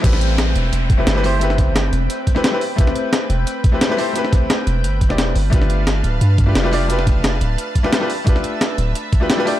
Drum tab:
CC |x---------------|----------------|----------------|----------------|
HH |x-x-x-x-x-x-x-o-|x-x-x-x-x-x-x-o-|x-x-x-x-x-x-x-o-|x-x-x-x-x-x-x-o-|
SD |-o--o-------o---|-oo-o------oo---|-o--o-------o---|-oo-o------oo---|
BD |o---------o-----|--o-------o-----|o---------o-----|--o-------o-----|

CC |----------------|----------------|----------------|
HH |x-x-x-x-x-x-x-o-|x-x-x-x-x-x-x-o-|x-x-x-x-x-x-x-o-|
SD |-o--o-------o---|-oo-o------oo---|-o--o-------o---|
BD |o---------o-----|--o-------o-----|o---------o-----|